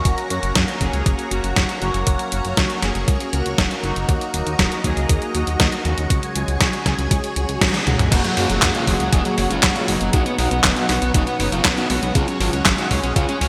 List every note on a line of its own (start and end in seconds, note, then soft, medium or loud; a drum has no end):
0.00 0.27 F#3 medium
0.00 0.27 A#3 medium
0.00 0.27 C#4 medium
0.00 0.27 F#4 loud
0.00 4.05 F#4 medium
0.00 4.04 A#5 medium
0.05 0.14 F#1 loud
0.05 6.06 A#4 medium
0.05 4.04 C#5 medium
0.05 kick loud
0.05 closed hi-hat medium
0.18 closed hi-hat soft
0.30 0.40 F#2 medium
0.30 0.78 F#3 medium
0.30 0.78 A#3 medium
0.30 0.78 C#4 medium
0.30 0.78 F#4 loud
0.30 closed hi-hat medium
0.43 0.52 F#1 medium
0.43 closed hi-hat soft
0.55 0.65 F#2 loud
0.55 kick loud
0.55 snare loud
0.55 closed hi-hat medium
0.68 closed hi-hat soft
0.81 0.90 F#1 medium
0.81 1.28 F#3 medium
0.81 1.28 A#3 medium
0.81 1.28 C#4 medium
0.81 1.28 G#4 loud
0.81 kick medium
0.81 closed hi-hat medium
0.93 1.03 C#2 medium
0.93 closed hi-hat soft
1.06 1.15 F#1 loud
1.06 kick loud
1.06 closed hi-hat medium
1.19 closed hi-hat soft
1.31 1.41 F#1 medium
1.31 1.79 F#3 medium
1.31 1.79 A#3 medium
1.31 1.79 C#4 medium
1.31 1.79 F#4 loud
1.31 closed hi-hat medium
1.44 1.53 F#1 medium
1.44 closed hi-hat soft
1.56 1.66 F#1 loud
1.56 kick loud
1.56 snare loud
1.56 closed hi-hat medium
1.69 closed hi-hat soft
1.82 1.91 F#1 medium
1.82 2.29 F#3 loud
1.82 2.29 A#3 medium
1.82 2.29 C#4 medium
1.82 2.29 F#4 loud
1.82 closed hi-hat soft
1.94 2.04 F#1 medium
1.94 closed hi-hat soft
2.07 2.16 F#1 loud
2.07 kick loud
2.07 closed hi-hat medium
2.19 closed hi-hat soft
2.32 2.42 F#1 medium
2.32 2.80 F#3 medium
2.32 2.80 A#3 medium
2.32 2.80 C#4 medium
2.32 2.80 F#4 loud
2.32 closed hi-hat medium
2.45 2.54 F#1 medium
2.45 closed hi-hat soft
2.57 2.67 C#2 loud
2.57 kick loud
2.57 snare loud
2.57 closed hi-hat medium
2.70 closed hi-hat soft
2.82 2.92 F#1 loud
2.82 3.30 F#3 medium
2.82 3.30 A#3 medium
2.82 3.30 C#4 medium
2.82 3.30 G#4 loud
2.82 snare medium
2.82 closed hi-hat medium
2.95 3.05 F#1 medium
2.95 closed hi-hat soft
3.08 3.17 C#2 loud
3.08 kick loud
3.08 closed hi-hat medium
3.20 closed hi-hat soft
3.33 3.42 C#2 medium
3.33 3.80 F#3 medium
3.33 3.80 A#3 medium
3.33 3.80 C#4 medium
3.33 3.80 F#4 loud
3.33 closed hi-hat medium
3.46 3.55 C#2 medium
3.46 closed hi-hat soft
3.58 3.68 F#1 loud
3.58 kick loud
3.58 snare loud
3.58 closed hi-hat medium
3.71 closed hi-hat soft
3.83 3.93 F#1 medium
3.83 4.31 F#3 loud
3.83 4.31 A#3 medium
3.83 4.31 D#4 medium
3.83 4.31 F#4 loud
3.83 closed hi-hat soft
3.96 4.05 F#1 medium
3.96 closed hi-hat soft
4.09 4.18 D#2 loud
4.09 8.08 F#4 medium
4.09 6.08 D#5 medium
4.09 6.08 A#5 medium
4.09 kick loud
4.09 closed hi-hat medium
4.21 closed hi-hat soft
4.34 4.43 D#1 medium
4.34 4.81 F#3 medium
4.34 4.81 A#3 medium
4.34 4.81 D#4 medium
4.34 4.81 F#4 loud
4.34 closed hi-hat medium
4.46 4.56 D#2 medium
4.46 closed hi-hat soft
4.59 4.68 D#1 loud
4.59 kick loud
4.59 snare loud
4.59 closed hi-hat medium
4.72 closed hi-hat soft
4.84 4.94 D#2 medium
4.84 5.32 F#3 medium
4.84 5.32 A#3 medium
4.84 5.32 D#4 medium
4.84 5.32 G#4 loud
4.84 kick medium
4.84 closed hi-hat medium
4.97 5.06 C#2 medium
4.97 closed hi-hat soft
5.09 5.19 D#2 loud
5.09 kick loud
5.09 closed hi-hat medium
5.22 closed hi-hat soft
5.35 5.44 D#2 loud
5.35 5.82 F#3 medium
5.35 5.82 A#3 medium
5.35 5.82 D#4 medium
5.35 5.82 F#4 loud
5.35 closed hi-hat medium
5.47 5.57 D#2 medium
5.47 closed hi-hat soft
5.60 5.69 D#2 loud
5.60 kick loud
5.60 snare loud
5.60 closed hi-hat medium
5.72 closed hi-hat soft
5.85 5.94 D#2 medium
5.85 6.32 C#3 loud
5.85 6.32 F#3 medium
5.85 6.33 G#3 medium
5.85 6.33 C#4 medium
5.85 6.33 F#4 loud
5.85 closed hi-hat soft
5.98 6.07 D#2 medium
5.98 closed hi-hat soft
6.10 6.20 C#2 loud
6.10 8.10 G#4 medium
6.10 8.10 C#5 medium
6.10 8.10 G#5 medium
6.10 kick loud
6.10 closed hi-hat loud
6.23 closed hi-hat soft
6.36 6.45 C#2 medium
6.36 6.83 C#3 medium
6.36 6.83 F#3 medium
6.36 6.83 G#3 medium
6.36 6.83 C#4 medium
6.36 6.83 F#4 loud
6.36 closed hi-hat medium
6.48 6.57 C#2 medium
6.48 closed hi-hat soft
6.61 6.70 B1 loud
6.61 kick loud
6.61 snare loud
6.61 closed hi-hat medium
6.73 closed hi-hat soft
6.86 6.95 C#2 medium
6.86 7.33 C#3 medium
6.86 7.33 F#3 medium
6.86 7.33 G#3 medium
6.86 7.33 C#4 medium
6.86 7.33 G#4 loud
6.86 kick medium
6.86 snare medium
6.86 closed hi-hat medium
6.99 7.08 C#2 medium
6.99 closed hi-hat soft
7.11 7.20 C#2 loud
7.11 kick loud
7.11 closed hi-hat loud
7.24 closed hi-hat soft
7.36 7.46 C#2 medium
7.36 7.84 C#3 medium
7.36 7.84 F#3 medium
7.36 7.84 G#3 medium
7.36 7.84 C#4 medium
7.36 7.84 F#4 medium
7.36 closed hi-hat medium
7.49 7.58 C#2 medium
7.49 closed hi-hat soft
7.61 7.71 G#1 loud
7.61 kick loud
7.61 snare loud
7.61 closed hi-hat loud
7.61 high tom medium
7.74 closed hi-hat soft
7.74 high tom medium
7.87 7.96 C#2 medium
7.87 8.34 G#3 loud
7.87 8.34 A#3 medium
7.87 8.34 C#4 medium
7.87 8.34 F#4 loud
7.87 closed hi-hat soft
7.87 mid tom medium
7.99 8.09 C#2 medium
7.99 closed hi-hat soft
7.99 mid tom medium
8.12 8.21 F#1 loud
8.12 8.20 A#3 medium
8.12 10.12 A#3 medium
8.12 10.12 F#4 medium
8.12 8.20 F#4 medium
8.12 10.12 G#4 medium
8.12 13.48 C#5 medium
8.12 10.12 F#5 medium
8.12 kick loud
8.12 closed hi-hat loud
8.12 crash loud
8.12 downlifter medium
8.24 8.33 F#3 medium
8.24 closed hi-hat soft
8.37 8.47 F#2 medium
8.37 8.85 G#3 medium
8.37 8.45 A#3 medium
8.37 8.85 A#3 medium
8.37 8.85 C#4 medium
8.37 8.85 F#4 loud
8.37 8.45 F#4 medium
8.37 open hi-hat loud
8.50 8.59 F#1 medium
8.50 8.58 F#3 medium
8.50 closed hi-hat soft
8.62 8.72 F#2 loud
8.62 8.70 F#3 medium
8.62 kick loud
8.62 snare loud
8.62 clap loud
8.62 closed hi-hat loud
8.75 8.83 C#4 medium
8.75 8.83 F4 medium
8.75 closed hi-hat soft
8.87 8.97 F#1 loud
8.87 8.96 F#3 medium
8.87 9.35 G#3 medium
8.87 9.35 A#3 medium
8.87 9.35 C#4 medium
8.87 9.35 G#4 loud
8.87 kick medium
8.87 open hi-hat loud
9.00 9.10 C#2 medium
9.00 9.08 F#3 medium
9.00 closed hi-hat soft
9.13 9.22 F#1 loud
9.13 9.21 F#3 medium
9.13 9.21 D#4 medium
9.13 kick loud
9.13 closed hi-hat loud
9.25 9.33 F#3 medium
9.25 closed hi-hat soft
9.38 9.47 F#1 medium
9.38 9.46 F#3 medium
9.38 9.85 G#3 medium
9.38 9.85 A#3 medium
9.38 9.85 C#4 medium
9.38 9.85 F#4 loud
9.38 open hi-hat loud
9.51 9.60 F#1 medium
9.51 9.59 C#4 medium
9.51 9.59 F4 medium
9.51 closed hi-hat soft
9.63 9.73 F#1 loud
9.63 9.71 F#3 medium
9.63 kick loud
9.63 snare loud
9.63 clap loud
9.63 closed hi-hat loud
9.76 9.84 C#4 medium
9.76 9.84 F4 medium
9.76 closed hi-hat soft
9.88 9.98 F#1 medium
9.88 10.36 B2 loud
9.88 10.36 F#3 medium
9.88 9.96 F#3 medium
9.88 10.36 B3 medium
9.88 10.36 C#4 medium
9.88 10.36 D#4 loud
9.88 open hi-hat loud
10.01 10.10 F#1 medium
10.01 10.09 F#3 medium
10.01 closed hi-hat soft
10.13 10.23 B1 loud
10.13 13.48 F#3 medium
10.13 12.13 B3 medium
10.13 10.22 D#4 medium
10.13 12.13 D#4 medium
10.13 10.22 F#4 medium
10.13 13.48 F#5 medium
10.13 kick loud
10.13 closed hi-hat loud
10.26 10.34 B3 medium
10.26 closed hi-hat soft
10.38 10.48 B1 medium
10.38 10.86 B2 medium
10.38 10.86 F#3 medium
10.38 10.86 B3 medium
10.38 10.86 C#4 medium
10.38 10.47 D#4 medium
10.38 10.86 D#4 loud
10.38 10.47 F#4 medium
10.38 open hi-hat loud
10.51 10.61 B1 medium
10.51 10.59 B3 medium
10.51 closed hi-hat soft
10.64 10.73 F#1 loud
10.64 10.72 B3 medium
10.64 kick loud
10.64 snare loud
10.64 clap loud
10.64 closed hi-hat medium
10.76 10.85 D#4 medium
10.76 10.85 F#4 medium
10.76 closed hi-hat soft
10.89 10.99 B1 loud
10.89 11.37 B2 medium
10.89 11.37 F#3 medium
10.89 10.97 B3 medium
10.89 11.37 B3 medium
10.89 11.37 C#4 medium
10.89 11.37 F#4 loud
10.89 snare medium
10.89 open hi-hat loud
11.02 11.11 B1 medium
11.02 11.10 B3 medium
11.02 closed hi-hat soft
11.14 11.24 F#1 loud
11.14 11.22 B3 medium
11.14 11.22 D#4 medium
11.14 kick loud
11.14 closed hi-hat loud
11.27 11.35 B3 medium
11.27 closed hi-hat soft
11.40 11.49 F#1 medium
11.40 11.87 B2 medium
11.40 11.87 F#3 medium
11.40 11.48 B3 medium
11.40 11.87 B3 medium
11.40 11.87 C#4 medium
11.40 11.87 D#4 loud
11.40 open hi-hat loud
11.52 11.62 F#1 medium
11.52 11.60 C#4 medium
11.52 11.60 F4 medium
11.52 closed hi-hat soft
11.65 11.74 B1 loud
11.65 11.73 B3 medium
11.65 kick loud
11.65 snare loud
11.65 clap loud
11.65 closed hi-hat medium
11.78 11.86 D#4 medium
11.78 11.86 F#4 medium
11.78 closed hi-hat soft
11.90 11.99 B1 medium
11.90 12.37 C#3 loud
11.90 12.37 F#3 medium
11.90 12.37 G#3 medium
11.90 11.98 B3 medium
11.90 12.37 C#4 medium
11.90 12.37 F#4 loud
11.90 open hi-hat loud
12.02 12.12 B1 medium
12.02 12.11 B3 medium
12.02 closed hi-hat soft
12.15 12.25 C#2 loud
12.15 13.48 G#3 medium
12.15 13.48 C#4 medium
12.15 12.23 F4 medium
12.15 12.23 G#4 medium
12.15 kick loud
12.15 closed hi-hat medium
12.28 12.36 C#4 medium
12.28 closed hi-hat soft
12.40 12.50 G#1 medium
12.40 12.88 C#3 medium
12.40 12.88 F#3 medium
12.40 12.88 G#3 medium
12.40 12.88 C#4 medium
12.40 12.49 F4 medium
12.40 12.88 F#4 loud
12.40 12.48 G#4 medium
12.40 open hi-hat loud
12.53 12.62 C#2 medium
12.53 12.61 C#4 medium
12.53 closed hi-hat soft
12.66 12.75 G#1 loud
12.66 12.74 C#4 medium
12.66 kick loud
12.66 snare loud
12.66 clap loud
12.66 closed hi-hat medium
12.78 12.86 D#4 medium
12.78 12.86 F#4 medium
12.78 closed hi-hat soft
12.91 13.00 C#2 medium
12.91 13.38 C#3 medium
12.91 13.38 F#3 medium
12.91 13.38 G#3 medium
12.91 12.99 C#4 medium
12.91 13.38 C#4 medium
12.91 13.38 G#4 loud
12.91 kick medium
12.91 open hi-hat loud
13.03 13.13 B1 medium
13.03 13.11 C#4 medium
13.03 closed hi-hat soft
13.16 13.25 C#2 loud
13.16 13.24 C#4 medium
13.16 13.24 F4 medium
13.16 kick loud
13.16 closed hi-hat medium
13.29 13.37 C#4 medium
13.29 closed hi-hat soft
13.41 13.48 C#2 loud
13.41 13.48 C#3 medium
13.41 13.48 F#3 medium
13.41 13.48 G#3 medium
13.41 13.48 C#4 medium
13.41 13.48 F#4 loud
13.41 open hi-hat loud